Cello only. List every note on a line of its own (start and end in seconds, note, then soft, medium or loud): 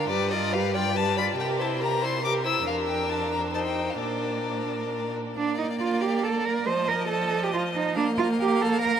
0.10 1.34 G2 medium
1.38 2.64 C3 soft
2.67 3.96 F2 soft
4.00 5.15 A#2 soft
5.37 5.57 D4 medium
5.58 5.66 D#4 medium
5.80 6.02 F4 medium
6.01 6.25 G4 medium
6.23 6.46 A4 medium
6.45 6.68 A#4 medium
6.67 6.90 C5 medium
6.88 7.08 A#4 medium
7.09 7.44 A4 medium
7.43 7.53 G4 medium
7.53 7.61 F4 medium
7.75 7.96 D#4 medium
7.96 8.04 D4 medium
8.18 8.26 F4 medium
8.40 8.63 G4 medium
8.61 8.81 A4 medium
8.82 9.00 A#4 medium